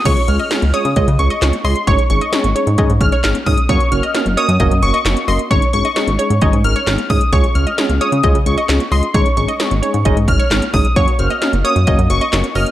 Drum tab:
CC |x---------------|----------------|----------------|----------------|
HH |xxxxxxxxxxxxxxox|xxxxxxxxxxxxxxox|xxxxxxxxxxxxxxox|xxxxxxxxxxxxxxox|
CP |------------x---|------------x---|------------x---|------------x---|
SD |----o-------o---|----o-------o---|----o-------o---|----o-------o---|
BD |o-------o-------|o-------o-o---o-|o-------o-------|o-------o-----o-|

CC |----------------|----------------|----------------|
HH |xxxxxxxxxxxxxxox|xxxxxxxxxxxxxxox|xxxxxxxxxxxxxxox|
CP |------------x---|------------x---|------------x---|
SD |----o-------o---|----o-------o---|----o-------o---|
BD |o-------o-------|o-------o-o---o-|o-------o-------|